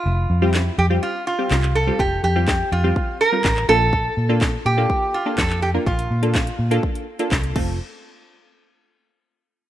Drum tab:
CC |----------------|----------------|----------------|--------------x-|
HH |----------------|----------------|----------------|-x-x-x-x-x-x-x--|
CP |----x-------xx--|----x-------xx--|----x-------xx--|----x-------x---|
SD |----o-------o---|----o-------o---|----o-------o---|----o-------o---|
BD |----------------|o---o---o---o---|o---o---o---o---|o---o---o---o-o-|

CC |----------------|
HH |----------------|
CP |----------------|
SD |----------------|
BD |----------------|